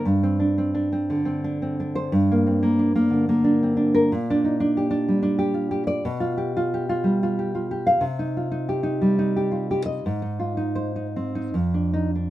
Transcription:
\new Staff \with { instrumentName = "Nylon-string guitar" } { \time 3/4 \key g \minor \tempo 4 = 89 << { r2 r8. c''16 | r2 r8. bes'16 | r2 r8. d''16 | \key c \minor r2 r8. f''16 |
r2 r8. ees''16 | r4 c''8 r4 ees'16 r16 | } \\ { g,16 c'16 d'16 c'16 d'16 c'16 d16 c'16 d'16 c'16 d'8 | g,16 bes16 c'16 bes16 d'16 bes16 d16 bes16 d'16 c'16 d'8 | bes,16 d'16 ees'16 d'16 g'16 d'16 g16 d'16 g'16 f'16 g'8 | b,16 f'16 g'16 f'16 g'16 f'16 g16 f'16 g'16 f'16 g'8 |
c16 ees'16 f'16 ees'16 g'16 ees'16 g16 ees'16 g'16 f'16 g'8 | aes,16 ees'16 f'16 ees'8 ees'16 c'16 ees'16 f,16 d'8 d'16 | } >> }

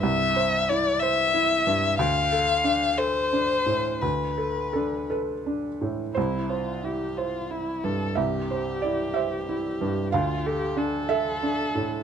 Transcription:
<<
  \new Staff \with { instrumentName = "Violin" } { \time 6/8 \key c \major \tempo 4. = 61 e''4 d''8 e''4. | f''4. c''4. | b'4. r4. | e'8 f'8 g'8 f'8 e'8 a'8 |
g'2. | f'8 g'8 a'2 | }
  \new Staff \with { instrumentName = "Felt piano" } { \time 6/8 \key c \major << { r2. | r2. | r4 a'8 b'4. | c''2. |
e''4 d''8 e''4. | f''4. e''4. | } \\ { <c, g,>8 c''8 e'8 c''8 e'8 g,8 | d,8 a'8 d'8 a'8 d'8 a,8 | d,8 a'8 d'8 a'8 d'8 a,8 | c,8 c''8 e'8 c''8 e'8 g,8 |
c,8 c''8 e'8 c''8 e'8 g,8 | d,8 a'8 d'8 a'8 d'8 a,8 | } >> }
>>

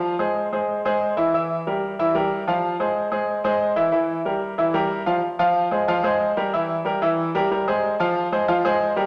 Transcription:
\new Staff \with { instrumentName = "Grand piano" } { \time 4/4 \key f \minor \tempo 4 = 185 <f f' f''>8 <aes aes' c''>4 <aes aes' c''>4 <aes aes' c''>4 <e e' e''>8 | <e e' e''>4 <g g' bes'>4 <e e' e''>8 <g g' bes'>4 <f f' f''>8~ | <f f' f''>8 <aes aes' c''>4 <aes aes' c''>4 <aes aes' c''>4 <e e' e''>8 | <e e' e''>4 <g g' bes'>4 <e e' e''>8 <g g' bes'>4 <f f' f''>8 |
r8 <f f' f''>4 <aes aes' c''>8 <f f' f''>8 <aes aes' c''>4 <g g' bes'>8 | <e e' e''>4 <g g' bes'>8 <e e' e''>4 <g g' bes'>8 <g g' bes'>8 <aes aes' c''>8~ | <aes aes' c''>8 <f f' f''>4 <aes aes' c''>8 <f f' f''>8 <aes aes' c''>4 <g g' bes'>8 | }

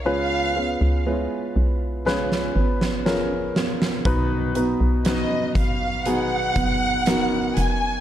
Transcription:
<<
  \new Staff \with { instrumentName = "Violin section" } { \time 4/4 \key des \mixolydian \tempo 4 = 60 f''4 r2. | r4 dis''8 f''8 fis''4. aes''8 | }
  \new Staff \with { instrumentName = "Grand piano" } { \time 4/4 \key des \mixolydian <des' f' aes' ces''>8 <des' f' aes' ces''>8 <des' fes' f' aes' ces''>4 <des' f' aes' ces''>4 <des' f' aes' bes'>4 | <b dis' fis' b'>8 <b dis' fis' b'>8 <b dis' fis' b'>4 <b dis' fis' aes'>4 <b dis' fis' bes'>4 | }
  \new Staff \with { instrumentName = "Grand piano" } { \clef bass \time 4/4 \key des \mixolydian des4. r2 r8 | b,4. r2 r8 | }
  \new Staff \with { instrumentName = "Steel-string acoustic guitar" } { \time 4/4 \key des \mixolydian <des aes ces' f' ces''>8 <ces' f' ces''>8 <aes ces' f' ces''>4 <des aes ces' f' ces''>8 <ces' f' ces''>4 <ces' f' ces''>8 | <b, dis fis b dis' b'>8 <fis b dis' b'>8 <fis b dis' b'>4 <b, dis fis b dis' b'>8 <fis b dis' b'>4. | }
  \new Staff \with { instrumentName = "FM bass" } { \clef bass \time 4/4 \key des \mixolydian des,8. des,8 r16 ces,4 aes,,4 r8 | b,,8. b,,8 r16 aes,,4 fis,,4 f,,8 | }
  \new DrumStaff \with { instrumentName = "Drums" } \drummode { \time 4/4 r4 r4 sn16 sn8 sn16 sn8 sn16 sn16 | <hh bd>8 hh8 <hh sn>8 <hh bd>8 hh8 <hh bd>8 <hh sn>8 hh8 | }
>>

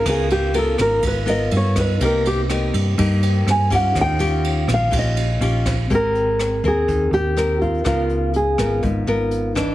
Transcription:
<<
  \new Staff \with { instrumentName = "Nylon-string guitar" } { \time 4/4 \key aes \major \tempo 4 = 123 aes'8 g'8 a'8 bes'8 ces''8 ees''8 des''8 ces''8 | bes'8 g'8 r2 aes''8 ges''8 | g''4. f''8 ees''4. r8 | bes'4. aes'4 g'4 f'8 |
f'4 aes'4 r2 | }
  \new Staff \with { instrumentName = "Tine electric piano" } { \time 4/4 \key aes \major <ees' bes' f''>2.~ <ees' bes' f''>8 <ees' bes' ces'' ees''>8 | <ees' bes' c'' g''>2~ <ees' bes' c'' g''>8 <ees' bes' c'' g''>4. | <ees' g' des'' f''>1 | <c' bes' g''>1 |
<ees' bes' f''>2.~ <ees' bes' f''>8 <ees' bes' ces'' ees''>8 | }
  \new Staff \with { instrumentName = "Nylon-string guitar" } { \time 4/4 \key aes \major << { <ces' f' bes'>4 <ces' f' bes'>4. <ces' f' bes'>4. | <bes ees' g'>4 <bes ees' g'>4 <bes ees' g'>4. <des' f' g'>8~ | <des' f' g'>8 <des' f' g'>4. <des' f' g'>8 r8 <des' f' g'>8 r8 | <c' g' bes'>4 r8 <c' bes'>4. <c' g' bes'>4 |
<ces' f' bes'>4 r8 <ces' f' bes'>4 <ces' f' bes'>4 <fes d'>8 | } \\ { des2 r2 | c2 g,2 | ees2 bes,2 | aes2 ees2 |
des2 aes,2 | } >> }
  \new Staff \with { instrumentName = "Fingered electric bass" } { \clef bass \time 4/4 \key aes \major des,4. aes,,8 aes,,4 g,4 | c,4. g,8 g,4 g,4 | ees,4. bes,,8 bes,,4 bes,,4 | aes,,4. ees,8 ees,8 ees,4. |
des,4. aes,,8 aes,,8 aes,,4. | }
  \new DrumStaff \with { instrumentName = "Drums" } \drummode { \time 4/4 <bd cymr ss>8 cymr8 cymr8 <cymr ss>8 <bd cymr>8 cymr8 cymr8 <bd cymr ss>8 | <bd cymr>8 cymr8 <cymr ss>8 cymr8 <bd cymr>8 cymr8 <cymr ss>8 <bd cymr>8 | <bd cymr ss>8 cymr8 cymr8 <cymr ss>8 <bd cymr>8 cymr8 cymr8 <bd cymr ss>8 | <hh bd>8 hh8 <hh ss>8 <hh bd>8 <hh bd>8 hh8 <hh ss>8 <hh bd>8 |
<hh bd ss>8 hh8 hh8 <hh bd ss>8 <hh bd>8 hh8 hh8 <hh bd ss>8 | }
>>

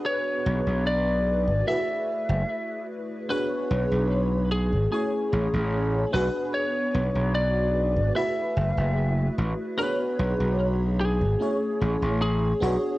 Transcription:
<<
  \new Staff \with { instrumentName = "Lead electric guitar" } { \time 4/4 \key b \dorian \tempo 4 = 74 cis''4 d''4 e''4. r8 | b'4. gis'8 gis'4. b'8 | cis''4 d''4 e''4. r8 | b'4 r8 gis'4. gis'4 | }
  \new Staff \with { instrumentName = "FM electric piano" } { \time 4/4 \key b \dorian <b d' fis' gis' b'>2 <a e' fis' gis' b'>2 | <b d' fis' gis' cis''>2 <a cis' e' gis' cis''>4. <b d' fis' gis' b'>8~ | <b d' fis' gis' b'>2 <a e' fis' gis' b'>2 | <b d' fis' gis' cis''>2 <a cis' e' gis' cis''>4. <b d' fis' gis' cis''>8 | }
  \new Staff \with { instrumentName = "Slap bass" } { \clef bass \time 4/4 \key b \dorian r8 b,,16 b,,4 gis,,16 r8. fis,,16 r4 | r8 b,,16 b,,4 gis,,16 r8 a,,16 a,,8. b,,16 r16 | r8 b,,16 b,,4 gis,,16 r8 fis,,16 fis,,8. a,,16 r16 | r8 b,,16 b,,4 gis,,16 r8 a,,16 a,,8. b,,16 r16 | }
>>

